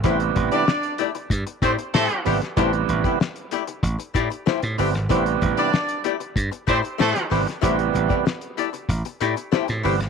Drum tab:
HH |xxxx-xxxxxxx-xox|xxxx-xxxxxxx-xox|xxxx-xxxxxxx-xox|xxxx-xxxxxxx-xox|
SD |----o-------o--o|----o-------o--o|----o-------oo-o|----o-------oo-o|
BD |o-o-----o-o-----|o--o----o-o-----|o-o-----o-o-----|o--o----o-------|